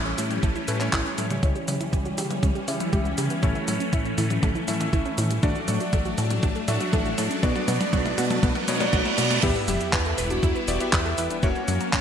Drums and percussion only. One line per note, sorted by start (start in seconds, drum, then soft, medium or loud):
0.06 closed hi-hat soft
0.06 cabasa soft
0.18 open hi-hat loud
0.18 cabasa medium
0.31 closed hi-hat medium
0.31 high tom medium
0.31 cabasa soft
0.43 kick loud
0.43 closed hi-hat medium
0.43 cabasa soft
0.56 closed hi-hat soft
0.56 cabasa soft
0.68 open hi-hat loud
0.68 cabasa medium
0.81 clap soft
0.81 closed hi-hat medium
0.81 cabasa soft
0.93 kick loud
0.93 clap loud
0.93 closed hi-hat medium
0.93 cabasa soft
1.06 closed hi-hat soft
1.06 cabasa soft
1.18 open hi-hat loud
1.18 high tom medium
1.18 cabasa medium
1.30 closed hi-hat medium
1.30 mid tom medium
1.30 cabasa soft
1.43 kick loud
1.43 closed hi-hat medium
1.43 mid tom soft
1.43 cabasa soft
1.56 closed hi-hat soft
1.56 cabasa soft
1.68 open hi-hat loud
1.68 high tom medium
1.68 cabasa medium
1.81 closed hi-hat medium
1.81 mid tom soft
1.81 cabasa soft
1.93 kick loud
1.93 closed hi-hat medium
1.93 cabasa soft
2.05 closed hi-hat soft
2.05 cabasa soft
2.18 open hi-hat loud
2.18 mid tom soft
2.18 cabasa medium
2.31 closed hi-hat medium
2.31 high tom medium
2.31 cabasa soft
2.43 kick loud
2.43 closed hi-hat medium
2.43 mid tom medium
2.43 cabasa soft
2.55 closed hi-hat soft
2.55 cabasa soft
2.68 open hi-hat loud
2.68 cabasa medium
2.80 closed hi-hat medium
2.80 high tom medium
2.80 cabasa soft
2.93 kick loud
2.93 closed hi-hat medium
2.93 cabasa soft
3.05 closed hi-hat soft
3.05 cabasa soft
3.18 open hi-hat loud
3.18 mid tom medium
3.18 cabasa medium
3.30 closed hi-hat medium
3.30 cabasa soft
3.43 kick loud
3.43 closed hi-hat medium
3.43 mid tom medium
3.43 cabasa soft
3.55 closed hi-hat soft
3.55 cabasa soft
3.68 open hi-hat loud
3.68 high tom medium
3.68 cabasa medium
3.80 closed hi-hat medium
3.80 cabasa soft
3.93 kick loud
3.93 closed hi-hat medium
3.93 cabasa soft
4.05 closed hi-hat soft
4.05 cabasa soft
4.18 open hi-hat loud
4.18 mid tom medium
4.18 cabasa medium
4.30 closed hi-hat medium
4.30 high tom medium
4.30 cabasa soft
4.43 kick loud
4.43 closed hi-hat medium
4.43 mid tom medium
4.43 high tom medium
4.43 cabasa soft
4.55 closed hi-hat soft
4.55 cabasa soft
4.68 open hi-hat loud
4.68 high tom medium
4.68 cabasa medium
4.81 closed hi-hat medium
4.81 mid tom medium
4.81 cabasa soft
4.93 kick loud
4.93 closed hi-hat medium
4.93 cabasa soft
5.06 closed hi-hat soft
5.06 cabasa soft
5.18 open hi-hat loud
5.18 mid tom medium
5.18 cabasa medium
5.31 closed hi-hat medium
5.31 cabasa soft
5.43 kick loud
5.43 closed hi-hat medium
5.43 mid tom medium
5.43 cabasa soft
5.55 closed hi-hat soft
5.55 cabasa soft
5.68 open hi-hat loud
5.68 mid tom medium
5.68 high tom medium
5.68 cabasa medium
5.80 closed hi-hat medium
5.80 cabasa soft
5.93 kick loud
5.93 closed hi-hat medium
5.93 mid tom medium
5.93 cabasa soft
6.05 closed hi-hat soft
6.05 cabasa soft
6.18 open hi-hat loud
6.18 mid tom medium
6.18 cabasa medium
6.30 closed hi-hat medium
6.30 high tom medium
6.30 cabasa soft
6.43 kick loud
6.43 closed hi-hat medium
6.43 mid tom medium
6.43 cabasa soft
6.55 closed hi-hat soft
6.55 cabasa soft
6.68 open hi-hat loud
6.68 mid tom medium
6.68 cabasa medium
6.81 closed hi-hat medium
6.81 high tom medium
6.81 cabasa soft
6.93 kick loud
6.93 closed hi-hat medium
6.93 mid tom medium
6.93 cabasa soft
7.06 closed hi-hat soft
7.06 cabasa soft
7.18 open hi-hat loud
7.18 mid tom medium
7.18 cabasa medium
7.31 closed hi-hat medium
7.31 cabasa soft
7.43 kick loud
7.43 closed hi-hat medium
7.43 mid tom medium
7.43 cabasa soft
7.56 closed hi-hat soft
7.56 mid tom medium
7.56 cabasa soft
7.68 open hi-hat loud
7.68 mid tom medium
7.68 high tom medium
7.68 cabasa medium
7.81 closed hi-hat medium
7.81 mid tom medium
7.81 cabasa soft
7.93 kick loud
7.93 closed hi-hat medium
7.93 mid tom medium
7.93 cabasa soft
8.06 closed hi-hat soft
8.06 mid tom medium
8.06 cabasa soft
8.18 open hi-hat loud
8.18 mid tom loud
8.18 cabasa medium
8.31 closed hi-hat medium
8.31 mid tom medium
8.31 high tom medium
8.31 cabasa soft
8.43 kick loud
8.43 closed hi-hat medium
8.43 mid tom loud
8.43 high tom medium
8.43 cabasa soft
8.55 closed hi-hat soft
8.55 mid tom medium
8.55 cabasa soft
8.68 open hi-hat loud
8.68 mid tom loud
8.68 high tom medium
8.68 cabasa medium
8.81 closed hi-hat medium
8.81 mid tom medium
8.81 cabasa soft
8.93 kick loud
8.93 closed hi-hat soft
8.93 mid tom loud
8.93 cabasa soft
9.06 closed hi-hat soft
9.06 mid tom loud
9.06 cabasa soft
9.18 open hi-hat loud
9.18 mid tom loud
9.18 cabasa medium
9.31 closed hi-hat medium
9.31 mid tom loud
9.31 cabasa soft
9.43 kick loud
9.43 closed hi-hat medium
9.43 crash loud
9.43 cabasa soft
9.56 closed hi-hat soft
9.56 cabasa soft
9.68 open hi-hat loud
9.68 high tom medium
9.68 cabasa medium
9.81 closed hi-hat medium
9.81 cabasa soft
9.93 kick loud
9.93 clap loud
9.93 closed hi-hat medium
9.93 cabasa soft
10.06 closed hi-hat soft
10.06 cabasa soft
10.18 open hi-hat loud
10.18 cabasa medium
10.30 closed hi-hat medium
10.30 cabasa soft
10.43 kick loud
10.43 closed hi-hat medium
10.43 cabasa soft
10.56 closed hi-hat soft
10.56 cabasa soft
10.68 open hi-hat loud
10.68 cabasa medium
10.80 closed hi-hat medium
10.80 cabasa soft
10.93 kick loud
10.93 clap loud
10.93 closed hi-hat medium
10.93 cabasa soft
11.05 closed hi-hat soft
11.05 cabasa soft
11.18 open hi-hat loud
11.18 cabasa medium
11.30 closed hi-hat medium
11.30 cabasa soft
11.43 kick loud
11.43 closed hi-hat medium
11.43 cabasa soft
11.56 closed hi-hat soft
11.56 cabasa soft
11.68 open hi-hat loud
11.68 high tom medium
11.68 cabasa medium
11.81 closed hi-hat medium
11.81 cabasa soft
11.93 kick loud
11.93 clap loud
11.93 cabasa soft